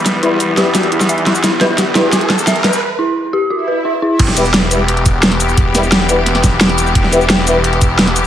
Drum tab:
CC |----------------|----------------|----------------|x---------------|
HH |x-x-x-x-xxx-xxx-|x-x-x-x-xxx-xxx-|----------------|x-x-x-x-xxx-xxx-|
SH |x---x-x-x--xx--x|x---x-x-x--xx--x|----------------|--xx--x---x---xx|
SD |o-----o-o--o--o-|o-o-o-o-o-o-o-o-|----------------|-o--o-------oo--|
BD |----------------|----------------|----------------|o---------o-----|

CC |----------------|----------------|
HH |x-x-x-x-xxx-xxx-|x-x-x-x-xxx-xxx-|
SH |--xx--x---x---xx|--xx--x---x---x-|
SD |--o-o---ooo-oo--|-o--o-------oo--|
BD |o---------o-----|o---------o-----|